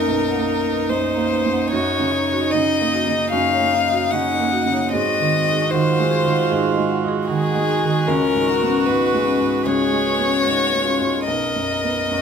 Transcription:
Already playing: B1 F#2 A#3 D#4 A#4
0.08 B1 B4
0.30 F#5
0.36 A#3
0.51 A#5
0.64 D#4
0.70 B4
0.89 F#2 C5 A#5
1.12 A#5
1.18 A#3
1.32 B4
1.46 F#2
1.52 F#5
1.72 F#2 F#4 C#5
2.00 C#3
2.13 D#4
2.27 D#4
2.33 F#4
2.51 C#3 D#5
2.74 D#5
2.81 A#3
2.94 F#4
3.07 C#3
3.13 D#5
3.31 F#2 C#4 F#4 F5
3.53 C#5
3.59 A#3
3.74 D#4
3.87 D#4
3.93 F#4
4.11 C#3 C#4 D#5 F#5
4.33 D#5
4.40 A#3
4.50 D#4 F#4
4.66 C#3
4.72 C#5
4.90 G#2 C4 F#4 G#4 D#5
5.20 D#3
5.46 D#4
5.51 G#4
5.70 D#3 F4 C5 F#5
5.91 F#5
5.99 G#3
6.11 G#4
6.25 D#3
6.31 F#5
6.50 G#2 G#4
6.70 D#5
6.77 G#3
6.90 F#5
7.04 D#4
7.08 G#4
7.28 D#3 D#4 G#4 F#5
7.49 F#5
7.55 G#3
7.69 G#4
7.82 D#3
7.89 D#5
8.07 C#2 C#4 A#4
8.35 G#2
8.48 F#4
8.62 B3
8.68 C#4
8.86 G#2 B4
9.06 B4
9.14 G#3
9.26 C#4
9.41 G#2
9.46 B4
9.65 C#2 C#4 G#4 C#5
9.86 G#4
9.92 G#3
10.06 B4
10.19 B3
10.25 C#4
10.43 G#2 F#4 B4
10.65 B4
10.73 G#3
10.85 C#4 F4
11.01 G#2
11.08 G#4
11.26 B1 D#4 A#4 B4 D#5
11.56 F#2
11.84 B3
11.89 B4
12.10 F#2 F#4 A#5

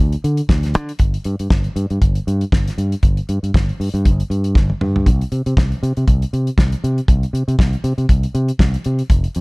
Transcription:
0.00 D2
0.12 closed hi-hat
0.24 D3, closed hi-hat
0.37 closed hi-hat
0.49 D2, kick, snare
0.63 snare, closed hi-hat
0.74 D3, closed hi-hat
0.89 closed hi-hat
0.99 G1, kick, closed hi-hat
1.14 closed hi-hat
1.24 G2, closed hi-hat
1.39 G2, closed hi-hat
1.50 G1, kick, snare
1.64 closed hi-hat
1.76 G2, closed hi-hat
1.90 G2, closed hi-hat
2.02 G1, kick, closed hi-hat
2.15 closed hi-hat
2.27 G2, closed hi-hat
2.41 closed hi-hat
2.52 G1, kick, snare
2.68 snare, closed hi-hat
2.78 G2, closed hi-hat
2.92 closed hi-hat
3.03 G1, kick, closed hi-hat
3.17 closed hi-hat
3.29 G2, closed hi-hat
3.43 G2, closed hi-hat
3.54 G1, kick, snare
3.69 closed hi-hat
3.80 G2, open hi-hat
3.94 G2, closed hi-hat
4.05 G1, kick, closed hi-hat
4.20 closed hi-hat
4.30 G2, closed hi-hat
4.44 closed hi-hat
4.55 G1, kick, snare
4.70 high tom
4.81 G2, mid tom
4.96 floor tom
5.06 C2, kick, closed hi-hat
5.21 closed hi-hat
5.32 C3, closed hi-hat
5.46 C3, closed hi-hat
5.57 C2, kick, snare
5.72 closed hi-hat
5.83 C3, closed hi-hat
5.97 C3, closed hi-hat
6.08 C2, kick, closed hi-hat
6.22 closed hi-hat
6.33 C3, closed hi-hat
6.47 closed hi-hat
6.58 C2, kick, snare
6.72 closed hi-hat
6.84 C3, closed hi-hat
6.98 closed hi-hat
7.08 C2, kick, closed hi-hat
7.23 closed hi-hat
7.33 C3, closed hi-hat
7.48 C3, closed hi-hat
7.59 C2, kick, snare
7.73 closed hi-hat
7.84 C3, closed hi-hat
7.98 C3, closed hi-hat
8.09 C2, kick, closed hi-hat
8.23 closed hi-hat
8.35 C3, closed hi-hat
8.48 closed hi-hat
8.59 C2, kick, snare
8.74 closed hi-hat
8.84 C3, closed hi-hat
8.99 closed hi-hat
9.10 F1, kick, closed hi-hat
9.24 closed hi-hat
9.35 F2, closed hi-hat

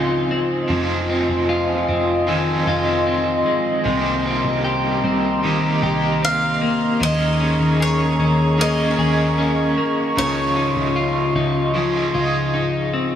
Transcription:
Already playing: C#2 C#3 F3 C4 D#4 F4 G#4 C5 D#5 G#5 C6
0.31 C4
0.68 F1 F2 F3 C4 D#4 G#5 C6
0.73 G#4
1.10 C4
1.29 F1
1.49 F4
1.89 F1 C4
2.27 D#3 F3 C4 D#4 G#4
2.66 F1 C4 D#4 F4 G#4
3.07 C4
3.46 G#3
3.84 C2 C3 G3 A#3 D#4 G4 A#5
3.89 G4
4.25 C4
4.44 C2
4.64 G4
5.04 C2 C4
5.43 D#3 G3 A#3 D#4 G4
5.82 C2 A#3 D#4 G4
6.22 C4 F5
6.61 A#3
7.00 D#2 D#3 A#3 C#4 G#4 D#5 C#6
7.04 G#4
7.40 C#4
7.60 D#2
7.80 G#4 C#5
8.19 D#2 C#4
8.58 D#3 A#3 C#4 G#4 D#5
8.97 D#2 A#3 C#4 G#4
9.38 C#4
9.77 A#3
10.16 C#2 C#3 F3 D#4 F4 C#5 D#5 C6
10.20 G#4
10.56 D#4
10.76 C#2
10.96 F4
11.35 C#2 D#4
11.74 F3 D#4 G#4
12.14 C#2 D#4 F4 G#4
12.54 D#4
12.93 C4

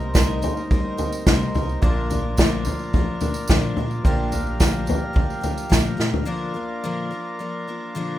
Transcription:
Already playing: C2 C3 G3 A#3 C4 D#4 A#4 C5 D#5 A#5
0.14 C3 G3 A#3 D#4 A#4, kick, snare, floor tom, tambourine
0.42 A#3 D#4 A#4, floor tom, tambourine
0.57 tambourine
0.71 G3 A#3 D#4 A#4, kick, floor tom, tambourine
0.97 G3 A#3 C4 D#4 A#4 D#5, floor tom, tambourine
1.12 tambourine
1.27 C3 G3 A#3 D#4 A#4, kick, snare, floor tom, tambourine
1.41 tambourine
1.54 C2 D#4 A#4, floor tom, tambourine
1.58 A#3
1.69 tambourine
1.81 A#1 A#2 D3 F3 A#3 D4 F4 A#4 D5 A#5, kick, floor tom
2.10 F3 A#3 D4 A#4, floor tom, tambourine
2.37 A#2 D3 F3 A#3 D4 A#4, kick, snare, floor tom, tambourine
2.65 F3 A#3 D4 A#4, floor tom, tambourine
2.79 tambourine
2.93 F3 A#3 D4, kick, floor tom, tambourine
2.97 A#4
3.21 D4 A#4, floor tom, tambourine
3.25 F3 A#3
3.34 tambourine
3.47 A#2 D3 F3 A#3 D4 A#4, kick, snare, floor tom, tambourine
3.62 tambourine
3.75 A#2 F3 A#3 D4 A#4 D5, floor tom
3.80 F3 A#3
3.91 tambourine
4.03 A#1 A#2 D3 F3 A#3 D4 G4 D5 F5 A#5, kick, floor tom, tambourine
4.32 F3 A#3 D4 G4, floor tom, tambourine
4.47 tambourine
4.60 A#2 D3 F3 A#3 D4 G4, kick, snare, floor tom, tambourine
4.86 F3 A#3 D4 G4, floor tom, tambourine
5.13 F3 A#3 D4 G4, kick, floor tom
5.30 tambourine
5.41 F3 A#3 D4 G4, floor tom, tambourine
5.58 tambourine
5.69 A#2 D3 F3 A#3 D4 G4, kick, snare, floor tom, tambourine
5.97 A#2 F3 A#3 D4 G4, snare, tambourine
6.13 floor tom
6.25 A#2 D3 F3 A#3 D4 F4 A#4 D5 A#5
6.54 F3 A#3 D4 A#4
6.84 A#2 D3 F3 A#3 D4 A#4
7.10 F3 A#3 D4 A#4
7.39 F3 A#3 D4 A#4
7.68 F3 A#3 D4 A#4
7.95 A#2 D3 F3 A#3 D4 A#4

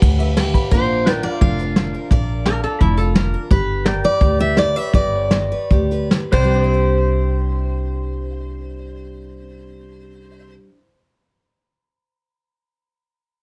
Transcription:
Already playing: G3 D4 G4 B4 D5 G5
0.02 D2 D3, kick, ride
0.19 B4 E5, ride
0.37 B3 G4 G5, snare, ride
0.54 B4 B5, kick, ride
0.71 A#1 A#2 A#3 D4 F4 A#4 C5, kick, closed hi-hat
1.06 A#3 B4 D5 G5, snare, closed hi-hat
1.14 A#4
1.23 F4 A#4 D5
1.33 F5
1.41 F1 F3 D4 F5, kick, closed hi-hat
1.59 F4, closed hi-hat
1.76 A#3, snare, closed hi-hat
1.95 A#4
2.11 A#1 A#2 A#4 D5, kick, closed hi-hat
2.46 A#3 A#4, snare, closed hi-hat
2.64 F4 A4
2.80 F1 F3 D4 E4, kick, closed hi-hat
2.97 F4 A4, closed hi-hat
3.15 A#3 A#4, snare, closed hi-hat
3.34 A#4
3.51 G1 G3 G4 B4, kick, closed hi-hat
3.85 B3 A#4 D5 G5, snare, closed hi-hat
4.04 B4 D5
4.21 D2 D3 G4, kick, closed hi-hat
4.39 B4 E5, closed hi-hat
4.57 B3 D5, snare, closed hi-hat
4.76 B4 E5
4.93 G1 G3 B4 D5, kick, closed hi-hat
5.31 B3, snare, closed hi-hat
5.52 B4
5.70 D2 D3 G4, kick, closed hi-hat
5.91 B4, closed hi-hat
6.11 B3, snare, closed hi-hat
6.32 C2 C3 B4 C5 D5 G5, kick, crash
6.44 G3
6.54 D4 D#5
6.62 E4 C5
6.72 C5 E5

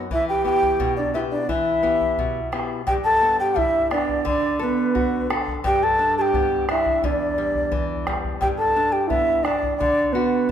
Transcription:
0.11 E3 E4 E5, bombo low
0.29 G4 G5
0.44 B3 E4 G4 G5, bombo low
0.62 bombo low
0.80 B2, bombo low
0.97 D4 D5
1.14 B3 E4 G4 E5
1.32 D4 D5
1.49 E3 E4 E5, bombo low
1.83 B3 E4 G4, bombo low
2.01 bombo low
2.18 B2, bombo low
2.52 B3 E4 G4, bombo rim
2.87 G2 G4 G5, bombo low
3.04 A4 A5
3.21 B3
3.40 G4 G5
3.56 G3 E4 E5, bombo low
3.91 B3 D4 D5, bombo rim
4.09 bombo low
4.25 D3 D4 D5, bombo low
4.59 B3 A4 B4
4.95 F#4, bombo low
5.30 A4, bombo rim
5.47 bombo low
5.64 G2 G4 G5, bombo low
5.83 A4 A5
5.99 D4
6.18 G4 G5 A5
6.34 B3, bombo low
6.69 D4 E4 E5, bombo rim
6.86 bombo low
7.03 E2 D4 D5, bombo low
7.38 G3
7.55 bombo low
7.72 E3, bombo low
8.07 G3, bombo rim, bombo low
8.24 bombo low
8.41 G2 G4 G5, bombo low
8.58 A4 A5
8.76 D4
8.92 G4 G5
9.07 B3 E4 E5, bombo low
9.43 D4 D5, bombo rim
9.63 bombo low
9.77 D3 D4 D5, bombo low
10.12 B3 F#4 B4

